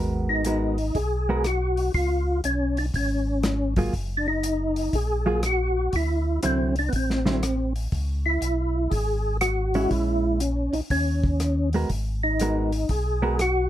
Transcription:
0.00 0.91 G#1 medium
0.00 0.28 D#2 medium
0.00 0.42 G#3 medium
0.00 0.42 B3 medium
0.00 0.43 F#4 medium
0.00 0.43 A#4 medium
0.29 0.98 D#4 medium
0.45 0.76 G#3 soft
0.45 0.76 B3 soft
0.45 0.76 F#4 soft
0.45 0.76 A#4 soft
0.45 closed hi-hat soft
0.78 open hi-hat soft
0.95 1.91 B1 medium
0.95 1.47 G#4 medium
0.95 kick soft
0.95 open hi-hat soft
1.29 1.44 G#3 soft
1.29 1.44 B3 medium
1.29 1.44 F#4 soft
1.29 1.44 A#4 medium
1.44 1.92 F#4 medium
1.44 cross-stick soft
1.44 closed hi-hat soft
1.77 open hi-hat soft
1.94 2.41 C#2 medium
1.94 2.41 F4 medium
1.94 kick soft
1.94 open hi-hat soft
2.44 2.91 B1 medium
2.44 2.79 C#4 medium
2.44 closed hi-hat soft
2.77 2.86 D4 medium
2.77 open hi-hat soft
2.94 3.90 G#1 medium
2.94 3.74 C#4 medium
2.94 kick soft
2.94 open hi-hat soft
3.43 cross-stick medium
3.43 snare soft
3.43 closed hi-hat soft
3.76 3.92 F#3 soft
3.76 3.93 A#3 medium
3.76 3.93 F4 medium
3.76 3.93 G#4 medium
3.76 kick soft
3.76 open hi-hat soft
3.93 4.89 F#1 medium
3.93 kick soft
3.93 open hi-hat soft
4.17 4.27 D4 medium
4.28 4.96 D#4 medium
4.43 closed hi-hat soft
4.76 open hi-hat soft
4.93 5.89 A#1 medium
4.93 5.41 G#4 medium
4.93 kick soft
4.93 open hi-hat soft
5.26 5.41 F#3 medium
5.26 5.42 A#3 medium
5.26 5.42 F4 medium
5.26 5.42 G#4 medium
5.43 5.96 F#4 medium
5.43 cross-stick medium
5.43 closed hi-hat soft
5.92 6.39 D2 medium
5.92 6.41 E4 medium
5.92 kick soft
5.92 open hi-hat soft
6.43 6.90 C2 medium
6.43 6.73 D3 soft
6.43 6.73 F#3 soft
6.43 6.73 C4 medium
6.43 6.75 C4 medium
6.43 6.73 E4 medium
6.43 closed hi-hat medium
6.76 6.90 D4 medium
6.76 open hi-hat soft
6.89 6.93 B3 soft
6.93 7.88 A1 medium
6.93 7.73 C4 medium
6.93 kick soft
6.93 open hi-hat soft
7.10 snare soft
7.26 7.41 D3 medium
7.26 7.41 F#3 medium
7.26 7.41 C4 medium
7.26 7.41 E4 medium
7.26 snare soft
7.43 cross-stick medium
7.43 closed hi-hat soft
7.76 open hi-hat soft
7.92 8.38 C#2 medium
7.92 kick soft
7.92 open hi-hat soft
8.26 8.94 E4 medium
8.41 8.88 B1 medium
8.41 closed hi-hat medium
8.90 9.87 G#1 medium
8.90 9.37 G#4 medium
8.90 kick soft
8.90 open hi-hat soft
9.41 9.92 F#4 medium
9.41 cross-stick medium
9.41 closed hi-hat soft
9.74 10.38 G#3 medium
9.74 10.38 C#4 medium
9.74 10.38 E4 medium
9.74 open hi-hat soft
9.89 10.70 A#1 medium
9.89 10.41 E4 medium
9.89 kick soft
9.89 open hi-hat soft
10.40 10.75 C#4 medium
10.40 closed hi-hat medium
10.73 10.81 A#1 soft
10.73 10.81 D#4 medium
10.73 open hi-hat soft
10.90 11.86 D#2 medium
10.90 11.70 C#4 medium
10.90 kick soft
10.90 open hi-hat soft
11.23 kick soft
11.40 cross-stick soft
11.40 closed hi-hat soft
11.73 11.89 G#3 medium
11.73 11.89 B3 soft
11.73 11.89 F#4 medium
11.73 11.89 A#4 medium
11.73 open hi-hat soft
11.89 12.85 G#1 medium
11.89 kick soft
11.89 open hi-hat soft
12.23 12.91 D#4 medium
12.40 12.70 G#3 medium
12.40 12.70 B3 soft
12.40 12.71 F#4 soft
12.40 12.71 A#4 medium
12.40 closed hi-hat soft
12.72 open hi-hat soft
12.89 13.69 B1 medium
12.89 13.41 G#4 medium
12.89 kick soft
12.89 open hi-hat soft
13.22 13.37 G#3 soft
13.22 13.37 B3 medium
13.22 13.38 F#4 medium
13.22 13.38 A#4 medium
13.39 13.69 F#4 medium
13.39 cross-stick medium
13.39 closed hi-hat soft

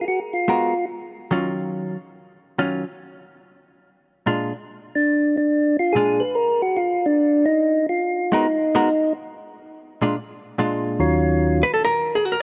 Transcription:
0.01 0.05 F4 medium
0.08 0.20 F#4 medium
0.33 0.86 F4 medium
0.48 0.73 G#3 soft
0.48 0.73 B3 soft
0.48 0.73 F#4 medium
0.48 0.73 A#4 soft
1.31 1.95 D#3 soft
1.31 1.96 F#3 medium
1.31 1.96 C#4 soft
1.31 1.96 F4 medium
2.59 2.83 D#3 soft
2.59 2.83 F#3 soft
2.59 2.83 C#4 medium
2.59 2.83 F4 medium
4.26 4.51 A#2 soft
4.26 4.51 G#3 medium
4.26 4.52 D4 soft
4.26 4.52 F4 medium
4.95 5.36 D4 medium
5.37 5.77 D4 medium
5.79 5.95 F4 medium
5.93 6.20 A#2 soft
5.93 6.20 G#3 soft
5.93 6.21 D4 medium
5.93 6.20 F4 soft
5.93 6.22 G#4 medium
6.20 6.36 B4 medium
6.35 6.62 A#4 medium
6.62 6.78 F#4 medium
6.76 7.06 F4 medium
7.06 7.45 D4 medium
7.46 7.86 D#4 loud
7.89 8.33 F4 medium
8.32 8.45 G#3 medium
8.32 8.46 B3 medium
8.32 9.13 D#4 medium
8.32 8.46 F#4 medium
8.32 8.47 A#4 medium
8.75 8.88 G#3 medium
8.75 8.88 B3 medium
8.75 8.88 F#4 medium
8.75 8.88 A#4 medium
10.02 10.14 A#2 medium
10.02 10.15 G#3 medium
10.02 10.15 D4 medium
10.02 10.15 F4 medium
10.58 11.00 A#2 soft
10.58 11.00 G#3 soft
10.58 11.00 D4 medium
10.58 11.01 F4 medium
10.99 11.64 D#2 medium
10.99 11.64 D#3 soft
10.99 11.64 F#3 medium
10.99 11.64 C#4 medium
10.99 11.64 F4 medium
11.63 11.73 B4 medium
11.74 11.82 A4 medium
11.85 12.17 A#4 medium
12.15 12.25 G#4 medium
12.25 12.35 F#4 medium
12.32 12.41 A#4 medium

